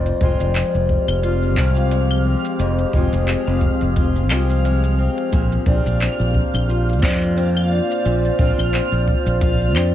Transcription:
Already playing: F1 F2 F3 A#3 C4 F4 C5 D5 F5 F6
0.06 closed hi-hat, shaker
0.21 F1 G#3 C4 F4, kick
0.40 F1, closed hi-hat, shaker
0.55 G#3 G4, clap, closed hi-hat, shaker
0.74 F1, shaker
0.89 kick
1.08 F1, closed hi-hat, claves, shaker
1.23 F4, closed hi-hat, shaker
1.43 shaker
1.57 C2 G#3 C4 F4, kick, clap
1.76 closed hi-hat, shaker
1.91 G#3, closed hi-hat, shaker
2.11 closed hi-hat, claves, shaker
2.26 C4
2.32 G#4
2.45 closed hi-hat, shaker
2.59 F1 F2, closed hi-hat, shaker
2.79 closed hi-hat, shaker
2.93 F1 G#3 C4 F4, kick
3.13 F1, closed hi-hat, shaker
3.28 G#3, clap, closed hi-hat, shaker
3.47 F1, shaker
3.61 kick
3.81 F1, closed hi-hat
3.96 F4, kick, closed hi-hat, shaker
4.16 shaker
4.30 C2 G#3 C4 F4, clap, claves
4.50 closed hi-hat, shaker
4.64 G#3, closed hi-hat, shaker
4.84 closed hi-hat, shaker
4.98 C4
5.18 closed hi-hat
5.32 A#1 A#2 A#3, kick, closed hi-hat, shaker
5.52 closed hi-hat, shaker
5.66 A#1 C4 D4 F4, kick
5.86 A#1, closed hi-hat, shaker
6.01 C4, clap, closed hi-hat, shaker
6.15 F4
6.20 A#1, shaker
6.30 C5
6.34 kick
6.54 A#1, closed hi-hat, claves, shaker
6.66 F4 D5, shaker
6.89 shaker
6.93 shaker
6.99 F2 C4 D4, kick, shaker
7.03 F4, clap, shaker
7.06 clap
7.09 clap, shaker
7.12 clap
7.15 clap, shaker
7.18 clap
7.21 clap, closed hi-hat, shaker
7.36 C4, closed hi-hat, shaker
7.57 closed hi-hat, claves, shaker
7.71 D4
7.91 closed hi-hat, shaker
8.05 A#1 A#2, closed hi-hat, shaker
8.25 closed hi-hat, shaker
8.39 A#1 C4 D4 F4, kick
8.58 A#1, closed hi-hat, claves, shaker
8.74 C4, clap, closed hi-hat, shaker
8.92 A#1, shaker
9.08 kick
9.26 A#1, closed hi-hat, shaker
9.41 F4, kick, closed hi-hat, shaker
9.61 shaker
9.76 F2 C4 D4 F4, clap, claves

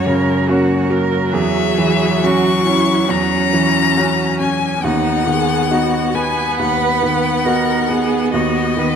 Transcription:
Already playing: F#2 F#3 C#5
0.07 C#3 A#4
0.49 A#3 C#4 F#4
0.91 A#3 A#4
1.33 E2 G#4 E5
1.78 E3
2.24 C#4 F#4 C#6
2.66 C#4 E4
3.08 E2 C#4 A#5
3.53 E3
3.97 C#4 F#4
4.39 C#4 G#5
4.83 D#2 B3 D#4 F#5
5.27 D#3 G#4
5.71 B3 D#4 F#4
6.14 B3 B4 G#5
6.59 D#2 F#5
7.03 D#3
7.45 B3 D#4 F#4 A#4
7.89 B3 G#4
8.33 D#2 F#4 D#5
8.77 D#3 B4

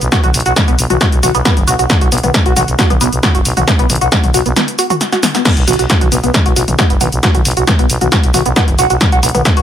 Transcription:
0.01 B1, closed hi-hat, shaker
0.12 F#4, kick, snare, closed hi-hat, shaker
0.24 B1 F#4, closed hi-hat, mid tom, shaker
0.34 B1, open hi-hat, shaker
0.40 closed hi-hat
0.46 B1 F#4, closed hi-hat, shaker
0.56 B3, kick, snare, closed hi-hat, mid tom, shaker
0.68 B1 B3, closed hi-hat, shaker
0.79 B1, open hi-hat, shaker
0.90 B1 F#4, closed hi-hat, mid tom, shaker
1.01 F#4, kick, snare, closed hi-hat, shaker
1.12 B1, closed hi-hat, shaker
1.23 B1 F#4, open hi-hat, mid tom, shaker
1.35 B1 B3, closed hi-hat, shaker
1.45 B3, kick, snare, closed hi-hat, shaker
1.57 F#1, closed hi-hat, mid tom, shaker
1.67 B1 F#4, open hi-hat, shaker
1.79 B1 F#4, closed hi-hat, shaker
1.90 kick, snare, closed hi-hat, mid tom, shaker
2.01 B1 F#4, closed hi-hat, shaker
2.12 B1 B3, open hi-hat, shaker
2.18 closed hi-hat
2.23 B1 B3, closed hi-hat, mid tom, shaker
2.34 kick, snare, closed hi-hat, shaker
2.46 B1 F#4, closed hi-hat, shaker
2.56 B1 F#4, open hi-hat, mid tom, shaker
2.68 B1, closed hi-hat, shaker
2.79 F#4, kick, snare, closed hi-hat, shaker
2.90 B1 B3, closed hi-hat, mid tom, shaker
3.01 B1 B3, open hi-hat, shaker
3.12 B1, closed hi-hat, shaker
3.23 F#4, kick, snare, closed hi-hat, mid tom, shaker
3.35 F#1 F#4, closed hi-hat, shaker
3.45 B1, open hi-hat, shaker
3.57 B1 F#4, closed hi-hat, mid tom, shaker
3.68 B3, kick, snare, closed hi-hat, shaker
3.79 B1 B3, closed hi-hat, shaker
3.90 B1, open hi-hat, mid tom, shaker
3.96 closed hi-hat
4.01 B1 F#4, closed hi-hat, shaker
4.12 F#4, kick, snare, closed hi-hat, shaker
4.23 B1, closed hi-hat, mid tom, shaker
4.34 B1 F#4, open hi-hat, shaker
4.46 B1 B3, closed hi-hat, shaker
4.56 B3, snare, closed hi-hat, mid tom, shaker
4.68 closed hi-hat, shaker
4.79 F#4, open hi-hat, shaker
4.90 F#4, closed hi-hat, mid tom, shaker
5.01 snare, closed hi-hat, shaker
5.12 F#4, snare, closed hi-hat, shaker
5.23 B3, snare, open hi-hat, mid tom, shaker
5.35 B3, snare, closed hi-hat, shaker
5.45 B3, kick, snare, closed hi-hat, crash, shaker
5.57 B1, closed hi-hat, shaker
5.68 B1 F#4, open hi-hat, mid tom, shaker
5.73 closed hi-hat
5.79 B1 F#4, closed hi-hat, shaker
5.90 kick, snare, closed hi-hat, shaker
6.01 B1 F#4, closed hi-hat, mid tom, shaker
6.12 B1 B3, open hi-hat, shaker
6.24 B1 B3, closed hi-hat, shaker
6.34 kick, snare, closed hi-hat, mid tom, shaker
6.46 B1 F#4, closed hi-hat, shaker
6.56 B1 F#4, open hi-hat, shaker
6.68 B1, closed hi-hat, mid tom, shaker
6.79 F#4, kick, snare, closed hi-hat, shaker
6.90 F#1 B3, closed hi-hat, shaker
7.01 B1 B3, open hi-hat, mid tom, shaker
7.12 B1, closed hi-hat, shaker
7.23 F#4, kick, snare, closed hi-hat, shaker
7.35 B1 F#4, closed hi-hat, mid tom, shaker
7.45 B1, open hi-hat, shaker
7.51 closed hi-hat
7.57 B1 F#4, closed hi-hat, shaker
7.67 B3, kick, snare, closed hi-hat, mid tom, shaker
7.79 B1 B3, closed hi-hat, shaker
7.90 B1, open hi-hat, shaker
8.01 B1 F#4, closed hi-hat, mid tom, shaker
8.12 F#4, kick, snare, closed hi-hat, shaker
8.23 B1, closed hi-hat, shaker
8.34 B1 F#4, open hi-hat, mid tom, shaker
8.46 B1 B3, closed hi-hat, shaker
8.56 B3, kick, snare, closed hi-hat, shaker
8.68 F#1, closed hi-hat, mid tom, shaker
8.79 B1 F#4, open hi-hat, shaker
8.90 B1 F#4, closed hi-hat, shaker
9.01 kick, snare, closed hi-hat, mid tom, shaker
9.12 B1 F#4, closed hi-hat, shaker
9.23 B1 B3, open hi-hat, shaker
9.29 closed hi-hat
9.35 B1 B3, closed hi-hat, mid tom, shaker
9.45 kick, snare, closed hi-hat, shaker
9.57 B1 F#4, closed hi-hat, shaker

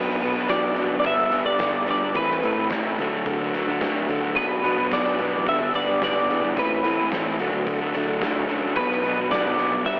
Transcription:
Already playing: B1 B2 F#3 B3 D4 B4
0.09 snare
0.21 B2 F#3 B3 D4, closed hi-hat
0.35 F#3 B3 D4
0.49 B1 B2 F#3 B3 D4 D5, kick, snare, closed hi-hat
0.63 F#3 B3 D4
0.76 B2 F#3 B3 D4, closed hi-hat
0.91 D2
1.00 G2 D5
1.04 G1 D3 G3 B3 D4 E5, kick, closed hi-hat
1.18 G3 B3 D4
1.31 G1 D3 G3 B3 D4, closed hi-hat
1.45 G2 G3 B3 D4 D5
1.59 G1 G2 D3 G3 B3 D4, kick, snare, closed hi-hat
1.86 G1 D3 G3 B3 D4, closed hi-hat
1.91 D5
2.02 G3 B3 D4
2.15 A1 A2 E3 A3 C4 E4 B4, kick, closed hi-hat
2.31 snare
2.43 A2 E3 A3 C4 E4, closed hi-hat
2.59 A3 C4 E4
2.70 A1 A2 E3 A3 C4 E4, kick, snare, closed hi-hat
2.86 A3 C4 E4
2.98 D2 D3 F#3 A3, closed hi-hat
3.02 D4
3.11 D2
3.26 D3, kick, closed hi-hat
3.41 F#3 A3 D4
3.54 D2 D3 F#3 A3 D4, closed hi-hat
3.66 D3 A3 D4
3.71 F#3
3.81 D2 D3 F#3 A3 D4, kick, snare, closed hi-hat
4.08 D3 F#3 A3 D4, closed hi-hat
4.21 F#3 A3 D4
4.35 B1 B2 F#3 B3 D4 B4, kick, closed hi-hat
4.62 B2 F#3 B3 D4, closed hi-hat
4.77 F#3 B3 D4
4.90 B1 B2 F#3 B3 D4 D5, kick, snare, closed hi-hat
5.05 F#3 B3 D4
5.18 B2 F#3 B3 D4, closed hi-hat
5.33 A1
5.47 G1 G2 D3 G3 B3 D4 E5, kick, closed hi-hat
5.61 G3 B3 D4
5.74 G1 D3 G3 B3 D4 D5, closed hi-hat
5.87 G2 G3 B3 D4
6.02 G1 G2 D3 G3 B3 D4 D5, kick, snare, closed hi-hat
6.29 E2 D3 G3 B3 D4, closed hi-hat
6.42 G3 B3 D4
6.56 A1 A2 E3 A3 C4 E4 B4, kick, closed hi-hat
6.83 A2 E3 A3 C4 E4, closed hi-hat
6.99 A3 C4 E4
7.11 A1 A2 E3 A3 C4 E4, kick, snare, closed hi-hat
7.26 A3 C4 E4
7.39 D2 D3 F#3 A3 D4, closed hi-hat
7.53 D2
7.67 D3, kick, closed hi-hat
7.81 F#3 A3 D4
7.94 D2 D3 F#3 A3 D4, closed hi-hat
8.07 D3 F#3 A3 D4
8.21 D2 D3 F#3 A3 D4, kick, snare, closed hi-hat
8.48 F#2 D3 F#3 A3 D4, closed hi-hat
8.62 F#3 A3 D4
8.76 B1 B2 F#3 B3 D4 B4, kick, closed hi-hat
8.91 snare
9.03 B2 F#3 B3 D4, closed hi-hat
9.20 F#3 B3 D4
9.31 B1 B2 F#3 B3 D4 D5, kick, snare, closed hi-hat
9.46 F#3 B3 D4
9.58 B2 F#3 B3 D4, closed hi-hat
9.71 B1
9.84 G1 G2 D3 G3 B3 D4 E5, kick, closed hi-hat

